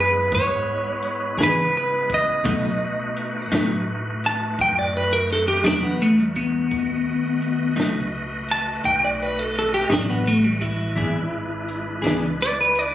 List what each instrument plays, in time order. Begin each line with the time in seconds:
Already playing: upright bass F#2, tonewheel organ G#3 B3 E4 B4
0.00 clean electric guitar B4
0.32 upright bass G#2, clean electric guitar C#5, kick, closed hi-hat
1.03 closed hi-hat
1.37 upright bass C#3, clean electric guitar E3 B3 D4 G#4, snare, closed hi-hat
1.43 clean electric guitar B4
1.77 clean electric guitar B4
2.10 kick, closed hi-hat
2.14 clean electric guitar D#5
2.44 clean electric guitar B2 F#3 A3 D#4, upright bass B2, tonewheel organ A3 D#4 F#4 B4, kick, closed hi-hat
3.17 closed hi-hat
3.52 upright bass A2, clean electric guitar B2 F#3 A3 D#4, snare, closed hi-hat
4.24 clean electric guitar A5, snare, closed hi-hat
4.59 upright bass F#2, clean electric guitar G5, kick, closed hi-hat
4.79 clean electric guitar D5
4.97 clean electric guitar B4
5.13 clean electric guitar A#4
5.30 clean electric guitar A4, snare, closed hi-hat
5.48 clean electric guitar G4
5.64 upright bass E2, clean electric guitar B2 F#3 A3 D4 D#4, snare, closed hi-hat
5.83 clean electric guitar B3
6.02 clean electric guitar A3
6.20 clean electric guitar G3
6.36 clean electric guitar B3, kick, closed hi-hat
6.71 upright bass D#2, tonewheel organ A3 F#4 B4 D#5, kick, closed hi-hat
7.42 closed hi-hat
7.76 upright bass C#2, clean electric guitar B2 F#3 A3 D#4, snare, closed hi-hat
8.49 clean electric guitar A5, closed hi-hat
8.84 upright bass B1, clean electric guitar G5, kick, closed hi-hat
9.04 clean electric guitar D5
9.22 clean electric guitar B4
9.39 clean electric guitar A4
9.55 clean electric guitar A4, closed hi-hat
9.74 clean electric guitar G4
9.90 upright bass A1, clean electric guitar B2 F#3 A3 D4 D#4, snare, closed hi-hat
10.10 clean electric guitar B3
10.27 clean electric guitar A3
10.44 clean electric guitar G3
10.61 clean electric guitar E4, kick, closed hi-hat
10.96 upright bass G#1, clean electric guitar E3 B3 D4 G#4, tonewheel organ G#3 D4 E4 B4, kick, closed hi-hat
11.69 closed hi-hat
12.02 upright bass C#2, clean electric guitar E3 B3 D4 G#4, closed hi-hat
12.07 snare
12.42 clean electric guitar D5
12.61 clean electric guitar B4
12.75 clean electric guitar D5, closed hi-hat